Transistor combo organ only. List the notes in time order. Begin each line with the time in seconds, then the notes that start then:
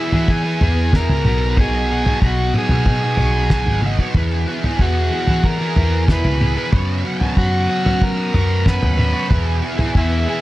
Already playing: E4
0.30 G#4
0.95 A#4
1.51 A#4
1.60 G#4
2.26 F#4
2.58 G#4
4.81 F#4
5.45 A#4
6.12 B4
7.38 F#4
8.03 A#4
8.68 B4
9.98 E4